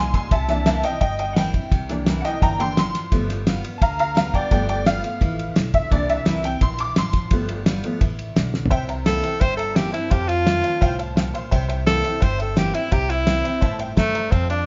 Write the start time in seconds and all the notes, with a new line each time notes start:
Already playing: C2 A#2 G3 G#3 D#4 G#5 C6
0.14 G#5 C6, kick, snare, ride
0.31 C2 C3 E5 A5, kick, ride
0.48 E3 A#3 D4 E5 A5, snare, ride
0.66 E3 A#3 C4 E4 E5 A5, snare, ride
0.83 C4 E4 D#5 G5, snare, ride
1.01 G1 G2 D#5 G5, kick, ride
1.19 D#5 G5, ride
1.33 E3 F#5, snare, ride
1.37 A#3 C4 E4 G5
1.53 C4 E4, kick, ride
1.72 C2 C3, kick, snare, ride
1.89 E3 A#3 D4, snare, ride
2.06 E3 A#3 C4 E4, snare, ride
2.20 F#5
2.25 C4 E4 D#5 G5, snare, ride
2.42 G1 E3 G5 A#5, kick, ride
2.59 E3 A#3 D4 G5 C6, ride
2.77 F3 C6, snare, ride
2.95 snare, ride
3.11 G1 F3 G3 A3 B3, kick, snare, ride
3.30 snare, ride
3.47 G3 B3 F4, snare, ride
3.63 B3 F4, ride
3.78 D2 D3 A5, kick, ride
3.82 F5 A#5
3.99 F5 A#5, ride
4.15 G3 B3 F4 F5 A#5, snare, ride
4.34 D5 G5, kick, ride
4.50 G1 F3 G3 A3 B3 D5 G5, kick, snare, ride
4.69 D5 G5, ride
4.85 G3 B3 F4 F5, snare, ride
5.02 B3 F4, ride
5.21 A1 E3, kick, ride
5.39 ride
5.56 B1 D3, snare, ride
5.74 E5, kick, ride
5.90 C2 C3 E3 A#3 D4 D5, kick, ride
6.09 E5, ride
6.25 C2 E3 A#3 C4 E4, snare, ride
6.43 C4 E4 G5, snare, ride
6.61 A#1 E3 C6, kick, ride
6.79 D6, ride
6.96 A1 F3 C6, snare, ride
7.13 kick, snare, ride
7.31 G1 F3 G3 A3 B3, kick, ride
7.49 ride
7.66 G3 B3 F4, snare, ride
7.84 F3 A3 B3 F4, ride
8.01 A1 E3, kick, ride
8.19 ride
8.36 B1 D3, snare, ride
8.54 snare
8.66 floor tom
8.70 C2 C3 C5 E5 G5, kick, ride
8.89 C5 E5 A#5, ride
9.06 E3 A#3 C4 E4 A4 C5 E5 G5, snare, ride
9.23 C4 E4 C5 E5 G5, ride
9.40 G1 G2 C5 E5 G5, kick, ride
9.57 A4 C5 E5 A#5, ride
9.75 E3 A#3 C4 E4 G4 C5 E5 A5, snare, ride
9.92 C4 E4 C5 E5 A5, ride
10.10 F2 G4 C5 F5 A5, kick, ride
10.27 F4 C5 F5 A5, ride
10.45 D#3 A3 C4 F4 C5 F5 A5, snare, ride
10.63 C5 F5 A5, ride
10.81 C2 A2 C5 F5 G5, kick, ride
10.99 C5 F5 A5, ride
11.16 A#2 C5 F5 G5 A5, snare, ride
11.34 C5 F5 C6, ride
11.51 C2 C3 C5 E5 G5, kick, ride
11.69 C5 E5 G5, ride
11.86 E3 A#3 C4 E4 A4 C5 E5 G5, snare, ride
12.04 C4 E4 C5 E5 G5, ride
12.21 G1 G2 C5 E5 G5, kick, ride
12.39 A4 C5 E5 G5, ride
12.56 E3 A#3 C4 E4 G4 C5 E5 G5, snare, ride
12.74 C4 E4 C5 E5 G5, ride
12.91 C2 C3 G4 C5 E5 A#5, kick, ride
13.09 E4 C5 E5 G5, ride
13.26 E3 A#3 C4 E4 C5 E5 G5, snare, ride
13.44 C4 E4 C5 E5 G5, ride
13.61 G1 A2 C5 E5 A5, kick, ride
13.79 C5 E5 G5, ride
13.97 G2 A3 C5 E5 A#5, kick, snare, ride
14.14 C5 E5 A#5, ride
14.31 F2 C4 C5 F5 A5, kick, ride
14.50 D4 C5 F5 A5, ride